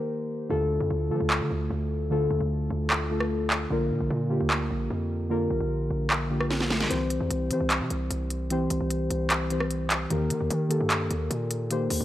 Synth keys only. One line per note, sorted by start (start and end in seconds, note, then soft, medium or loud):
0.00 0.53 D#3 loud
0.00 0.53 A#3 loud
0.00 0.52 G4 loud
0.00 0.30 A#4 medium
0.00 0.52 C5 loud
0.49 0.89 D3 loud
0.49 0.89 A3 medium
0.49 0.89 F4 loud
0.49 0.90 A4 loud
1.10 1.62 D3 medium
1.10 1.63 A3 medium
1.10 1.63 F4 medium
1.10 1.63 A4 loud
2.10 2.62 D3 loud
2.10 2.63 A3 loud
2.10 2.63 F4 loud
2.10 2.63 A4 loud
3.10 3.49 D3 medium
3.10 3.50 A3 medium
3.10 3.50 F4 medium
3.10 3.50 A4 loud
3.70 4.10 D3 loud
3.70 4.10 A#3 loud
3.70 4.10 F4 loud
3.70 4.10 A#4 loud
4.29 4.82 D3 medium
4.29 4.82 A#3 medium
4.29 4.83 F4 medium
4.29 4.83 G4 loud
5.29 5.82 D3 loud
5.29 5.82 A#3 loud
5.29 5.83 F4 loud
5.29 5.83 A#4 loud
6.30 6.69 D3 medium
6.30 6.69 A#3 medium
6.30 6.70 F4 medium
6.30 6.70 G4 medium
6.88 7.29 E3 loud
6.88 7.29 C4 loud
6.88 7.29 G4 loud
6.88 7.29 C5 loud
7.51 8.03 E3 medium
7.51 8.03 C4 medium
7.51 8.04 G4 medium
7.51 8.04 C5 loud
8.51 9.03 E3 loud
8.51 9.03 C4 loud
8.51 9.03 G4 loud
8.51 9.04 C5 loud
9.50 9.90 E3 medium
9.50 9.90 C4 medium
9.50 9.90 G4 medium
9.50 9.91 C5 loud
10.10 10.49 D#3 loud
10.10 10.50 A#3 loud
10.10 10.50 G4 loud
10.10 10.50 A#4 loud
10.69 11.22 D#3 medium
10.69 11.22 A#3 medium
10.69 11.22 G4 medium
10.69 11.23 A4 loud
11.70 12.05 D#3 loud
11.70 12.05 A#3 loud
11.70 12.05 G4 loud
11.70 12.05 C5 loud